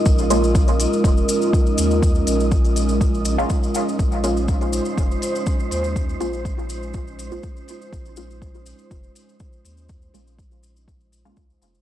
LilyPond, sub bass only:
\new Staff \with { instrumentName = "Sub bass" } { \clef bass \time 4/4 \key bes \minor \tempo 4 = 122 bes,,4. r8 f,,8 r4 ees,8~ | ees,8 bes,,2~ bes,,8 r4 | bes,,4. r8 f,,8 r4 ees,8~ | ees,8 bes,,2~ bes,,8 r4 |
bes,,4. r8 f,,8 r4 ees,8~ | ees,8 bes,,2~ bes,,8 des,8 f,,8 | }